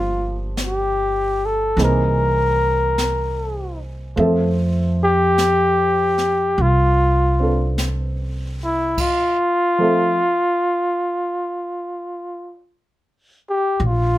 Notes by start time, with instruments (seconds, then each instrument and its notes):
Already playing: upright bass G1, upright piano F3 G3 A#3 D4 G4, flugelhorn F4
0.57 brush sweep, snare, hi-hat pedal
0.63 flugelhorn G4
1.46 flugelhorn A4
1.77 upright bass C2, upright piano E3 A#3 C4 D#4 G#4, brush sweep, snare
1.84 flugelhorn A#4
2.98 brush sweep, snare, hi-hat pedal
4.16 upright bass F2, upright piano F3 A3 C4 E5, brush sweep
4.21 upright piano A4
5.03 flugelhorn G4
5.38 brush sweep, snare, hi-hat pedal
6.18 snare
6.58 upright bass C2, flugelhorn F4, brush sweep
7.40 upright piano C4 D4 A4
7.78 brush sweep, snare, hi-hat pedal
8.64 flugelhorn E4
8.98 flugelhorn F4, kick, crash
9.78 upright piano F3 A3 C4
9.82 upright piano A4 E5
13.50 flugelhorn G4
13.80 upright bass A#1, brush sweep
13.87 flugelhorn F4